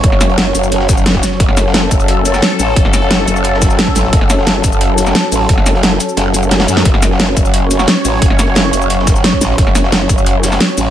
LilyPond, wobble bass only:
\new Staff \with { instrumentName = "Wobble bass" } { \clef bass \time 4/4 \key fis \minor \tempo 4 = 176 fis,,4. fis,,8 fis,,8 fis,,4 r8 | fis,,4. fis,,4. r8 a,,8 | fis,,4. fis,,4. r8 a,,8 | fis,,4. fis,,4. r8 a,,8 |
fis,,4. r8 fis,,8 fis,,4 fis,8 | fis,,4. fis,,4. r8 a,,8 | fis,,4. fis,,4. r8 a,,8 | fis,,4. fis,,4. r8 a,,8 | }